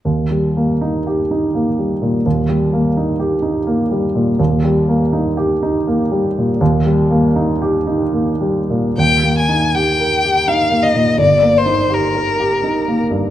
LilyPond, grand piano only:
\new Staff \with { instrumentName = "Grand piano" } { \time 3/4 \key ees \major \tempo 4 = 82 \tuplet 3/2 { ees,8 g8 bes8 ees'8 g'8 ees'8 bes8 g8 bes,8 } | \tuplet 3/2 { ees,8 g8 bes8 ees'8 g'8 ees'8 bes8 g8 bes,8 } | \tuplet 3/2 { ees,8 g8 bes8 ees'8 g'8 ees'8 bes8 g8 bes,8 } | \tuplet 3/2 { ees,8 g8 bes8 ees'8 g'8 ees'8 bes8 g8 bes,8 } |
\tuplet 3/2 { ees,8 bes8 ees'8 g'8 bes'8 g'8 ees'8 bes8 bes,8 } | \tuplet 3/2 { g,,8 bes8 ees'8 g'8 bes'8 g'8 ees'8 bes8 g,8 } | }